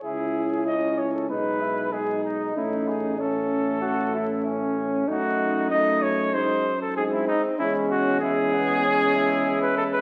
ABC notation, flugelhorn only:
X:1
M:4/4
L:1/8
Q:1/4=96
K:C#m
V:1 name="Flugelhorn"
E2 C2 D E D2- | D2 C2 F E C2 | D4 D z ^B,2 | C2 E B, C E3 |]